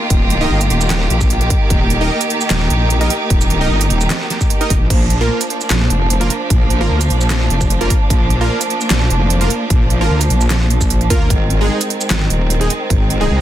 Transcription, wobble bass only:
0.10 0.49 D#1 loud
0.50 0.69 G1 loud
0.70 1.09 D#1 loud
1.10 1.49 A#1 loud
1.70 2.09 D#1 medium
2.50 2.69 D#1 loud
2.70 3.09 A#1 loud
3.30 3.69 D#1 loud
3.70 3.89 G1 loud
3.90 4.09 D#1 loud
4.70 4.79 F1 loud
4.81 4.89 A#1 loud
4.90 5.29 A#1 loud
5.70 5.89 A#1 loud
5.90 6.29 F1 loud
6.50 6.89 A#1 loud
6.90 7.09 D2 loud
7.10 7.49 A#1 loud
7.50 7.89 F1 medium
8.10 8.49 A#1 loud
8.90 9.09 A#1 loud
9.10 9.49 F1 loud
9.70 10.09 A#1 loud
10.10 10.29 D2 loud
10.30 11.09 A#1 loud
11.10 11.29 D2 medium
11.30 11.69 G#1 loud
12.10 12.29 G#1 loud
12.30 12.69 D#1 loud
12.90 13.29 G#1 medium
13.30 13.41 C2 loud

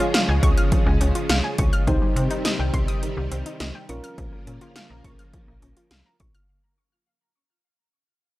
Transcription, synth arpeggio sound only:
0.14 0.22 F5 medium
0.29 0.36 G#5 medium
0.43 0.51 C#6 loud
0.57 0.65 F6 medium
0.72 0.80 F3 medium
0.86 0.94 G#3 medium
1.01 1.08 C#4 medium
1.15 1.23 F4 medium
1.30 1.37 F5 medium
1.44 1.52 G#5 medium
1.58 1.66 C#6 medium
1.73 1.81 F6 loud
1.87 1.95 D#3 medium
2.02 2.09 G3 medium
2.16 2.24 C4 medium
2.31 2.38 D#4 medium
2.45 2.53 D#5 medium
2.59 2.67 G5 medium
2.74 2.81 C6 loud
2.88 2.96 D#6 medium
3.03 3.10 D#3 medium
3.17 3.25 G3 medium
3.31 3.39 C4 medium
3.46 3.54 D#4 medium
3.60 3.68 D#5 medium
3.75 3.83 G5 medium
3.89 3.97 C#6 medium
4.04 4.11 F6 loud
4.18 4.26 F3 medium
4.33 4.40 A#3 medium
4.47 4.55 C#4 medium
4.61 4.69 F4 medium
4.76 4.83 F5 medium
4.90 4.98 A#5 medium
5.05 5.12 C#6 loud
5.19 5.27 F6 medium
5.34 5.41 F3 medium
5.48 5.56 A#3 medium
5.62 5.70 C#4 medium
5.77 5.85 F4 medium
5.91 5.99 F5 loud
6.06 6.13 A#5 medium
6.20 6.28 C#6 medium
6.35 6.42 F6 loud

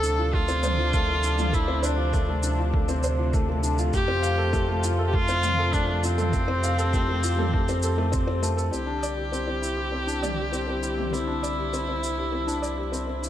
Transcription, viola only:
0.00 0.36 A4 loud
0.34 1.56 F4 loud
1.54 1.86 E4 medium
1.84 2.44 D4 medium
3.94 4.80 G4 loud
5.07 5.16 G4 medium
5.15 5.75 F4 loud
5.74 6.06 D4 loud
6.05 8.44 C4 medium
8.73 11.15 G4 medium
11.13 13.23 E4 medium

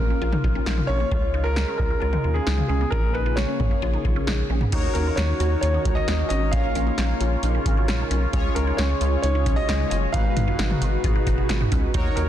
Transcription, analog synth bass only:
0.00 0.15 A#1 medium
0.21 0.37 A#1 loud
0.44 0.60 B1 medium
0.66 0.82 A#1 loud
0.89 1.05 A#1 loud
1.11 1.65 C#2 loud
1.79 1.95 C#2 loud
2.02 2.18 C#2 loud
2.25 2.40 D#2 medium
2.47 2.63 C#2 medium
2.69 2.85 C#2 loud
2.92 3.46 A#1 loud
3.60 3.76 A#1 medium
3.82 3.98 A#1 loud
4.05 4.20 B1 medium
4.27 4.43 A#1 loud
4.50 4.66 A#1 loud
4.72 4.88 D#2 loud
4.95 5.11 D#2 loud
5.17 5.33 D#2 loud
5.40 5.56 D#2 loud
5.63 5.78 D#2 loud
5.85 6.01 C#2 medium
6.08 6.23 D#2 loud
6.30 6.54 G#1 loud
6.53 6.69 A#1 loud
6.75 6.91 A#1 loud
6.98 7.14 A#1 medium
7.21 7.36 A#1 medium
7.43 7.59 A#1 loud
7.66 7.89 G#1 medium
7.88 8.04 A#1 medium
8.11 8.26 B1 medium
8.33 8.49 C#2 loud
8.56 8.72 C#2 loud
8.79 8.94 C#2 loud
9.01 9.17 C#2 loud
9.23 9.48 C#2 loud
9.46 9.62 B1 medium
9.69 9.85 C#2 loud
9.91 10.07 F#1 medium
10.14 10.30 G#1 loud
10.37 10.52 G#1 loud
10.59 10.75 G#1 loud
10.82 10.97 G#1 loud
11.04 11.20 G#1 loud
11.27 11.42 F#1 medium
11.49 11.65 G#1 medium
11.72 11.88 C#2 loud
11.94 12.10 D#2 loud
12.17 12.29 D#2 loud

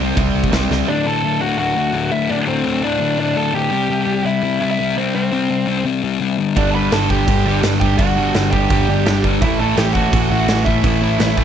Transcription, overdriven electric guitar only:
0.00 0.14 C3 loud
0.00 0.15 G3 medium
0.00 0.16 C4 medium
0.16 0.50 C3 loud
0.16 0.51 G3 loud
0.16 0.51 C4 loud
0.51 0.68 C3 medium
0.51 0.69 G3 medium
0.51 0.70 C4 medium
0.70 0.87 C3 medium
0.70 0.87 G3 medium
0.70 0.87 C4 loud
6.57 6.73 G2 loud
6.57 6.73 D3 loud
6.57 6.75 G3 loud
6.74 6.92 G2 medium
6.74 6.91 D3 medium
6.74 6.93 G3 loud
6.92 7.09 G2 medium
6.92 7.09 D3 medium
6.92 7.10 G3 loud
7.10 7.26 G2 medium
7.10 7.27 D3 medium
7.10 7.27 G3 loud
7.27 7.43 G2 loud
7.27 7.44 D3 medium
7.27 7.45 G3 loud
7.45 7.61 G2 medium
7.45 7.62 D3 loud
7.45 7.62 G3 loud
7.62 7.79 G2 medium
7.62 7.80 D3 medium
7.62 7.81 G3 loud
7.80 7.97 G2 medium
7.80 7.98 D3 medium
7.80 7.98 G3 loud
7.98 8.14 G2 loud
7.98 8.15 D3 loud
7.98 8.16 G3 loud
8.16 8.33 G2 loud
8.16 8.34 D3 medium
8.16 8.35 G3 loud
8.34 8.51 G2 loud
8.34 8.51 D3 loud
8.34 8.52 G3 loud
8.52 8.69 G2 medium
8.52 8.70 D3 medium
8.52 8.70 G3 loud
8.70 8.87 G2 medium
8.70 8.87 D3 loud
8.70 8.88 G3 loud
8.88 9.04 G2 loud
8.88 9.05 D3 loud
8.88 9.05 G3 loud
9.05 9.22 G2 medium
9.05 9.23 D3 medium
9.05 9.23 G3 medium
9.24 9.41 G2 loud
9.24 9.41 D3 loud
9.24 9.41 G3 loud
9.41 9.58 A2 loud
9.41 9.59 E3 loud
9.41 9.60 A3 loud
9.59 9.76 A2 medium
9.59 9.76 E3 medium
9.59 9.77 A3 medium
9.76 9.94 A2 loud
9.76 9.95 E3 loud
9.76 9.95 A3 loud
9.95 10.11 A2 medium
9.95 10.12 E3 loud
9.95 10.13 A3 loud
10.12 10.28 A2 medium
10.12 10.29 E3 medium
10.12 10.31 A3 loud
10.30 10.46 A2 loud
10.30 10.47 E3 loud
10.30 10.49 A3 loud
10.47 10.64 A2 medium
10.47 10.65 E3 medium
10.47 10.66 A3 loud
10.65 10.82 A2 medium
10.65 10.83 E3 loud
10.65 10.83 A3 loud
10.83 11.00 A2 loud
10.83 11.01 E3 loud
10.83 11.01 A3 loud
11.01 11.17 A2 medium
11.01 11.18 E3 medium
11.01 11.19 A3 loud
11.19 11.36 A2 loud
11.19 11.37 E3 loud
11.19 11.37 A3 loud
11.37 11.44 A2 medium
11.37 11.44 E3 medium
11.37 11.44 A3 loud

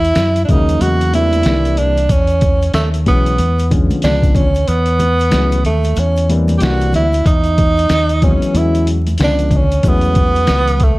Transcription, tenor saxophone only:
0.00 0.44 E4 loud
0.45 0.52 D4 medium
0.51 0.83 D#4 loud
0.81 1.13 F#4 loud
1.15 1.80 E4 loud
1.78 2.12 D4 loud
2.11 2.74 C#4 loud
2.75 2.89 A3 medium
3.08 3.74 B3 loud
4.04 4.37 D4 loud
4.35 4.69 C#4 medium
4.68 5.64 B3 loud
5.66 6.01 A3 medium
6.00 6.30 C#4 medium
6.58 6.64 G4 medium
6.63 6.94 F#4 loud
6.95 7.25 E4 medium
7.27 8.25 D#4 loud
8.23 8.58 C#4 medium
8.57 8.88 E4 medium
9.24 9.58 D4 loud
9.56 9.90 C#4 medium
9.89 10.85 B3 loud
10.84 10.99 A3 medium

